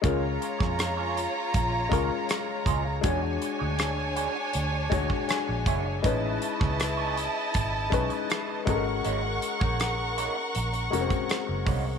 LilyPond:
<<
  \new Staff \with { instrumentName = "Violin section" } { \time 4/4 \key des \major \tempo 4 = 80 <f' des'' bes''>1 | <d' cis'' gis''>1 | <e' dis'' a''>2.~ <e' dis'' a''>8 <bes' ges'' des'''>8~ | <bes' ges'' des'''>1 | }
  \new Staff \with { instrumentName = "Clean electric guitar" } { \time 4/4 \key des \major <bes f' aes' des''>16 r8 <bes f' aes' des''>16 r16 <bes f' aes' des''>16 r4 <bes f' aes' des''>16 r8. <bes f' aes' ees''>16 r16 | <d' fis' gis' cis''>16 r8 <d' fis' gis' cis''>16 r8 <d' fis' gis' cis''>16 r8. <d' fis' gis' cis''>16 r8. <d' fis' gis' cis''>16 r16 | <b dis' gis' cis''>16 r8 <b dis' gis' cis''>16 r16 <b dis' gis' cis''>16 r4 <b dis' gis' cis''>16 r8. <bes ees' ges' ees''>16 r16 | <bes ees' ges' des''>16 r8 <bes ees' ges' des''>16 r8 <bes ees' ges' des''>16 r8. <bes ees' ges' des''>16 r8. <bes ees' ges' des''>16 r16 | }
  \new Staff \with { instrumentName = "Grand piano" } { \time 4/4 \key des \major << { r1 | r2. gis''8 e''8 | r1 | r1 | } \\ { <aes des' f' bes'>4. r4 <aes des' f' bes'>4 r8 | <gis d' fis' cis''>4. r4 <gis d' fis' cis''>4 r8 | <gis cis' dis' b'>4. r4 <gis cis' dis' b'>4 <aes des' ges' a' bes'>8~ | <aes des' ges' a' bes'>4 r4. <aes c' des' ges' bes'>4 r8 | } >> }
  \new Staff \with { instrumentName = "Fingered electric bass" } { \clef bass \time 4/4 \key des \major des,8 r16 f,4 r16 bes,,8 des,16 r8. des,8 | e,8 r16 d,4 r16 d,8 d,16 r8 bes,,16 fis,,8 | a,,8 r16 cis,4 r16 gis,,8 b,,16 r8. aes,,8 | aes,,8 r16 bes,,4 r16 bes,,8 f,,16 r8 ges,,16 c,8 | }
  \new DrumStaff \with { instrumentName = "Drums" } \drummode { \time 4/4 <hh bd>8 hh16 <bd ss>16 <hh ss>8 hh8 <hh bd>8 <hh bd>8 <hh ss>8 <hh bd>8 | <hh bd>8 hh8 <hh ss>8 hh8 hh8 <hh bd>16 bd16 <hh ss>8 <hh bd>8 | <hh bd>8 hh16 <bd ss>16 <hh ss>8 hh8 <hh bd>8 <hh bd>16 hh16 <hh ss>8 <hh bd>8 | hh8 hh16 bd16 <hh ss>8 hh8 hh16 hh16 hh16 <hh bd>16 <hh ss>8 <hho bd>8 | }
>>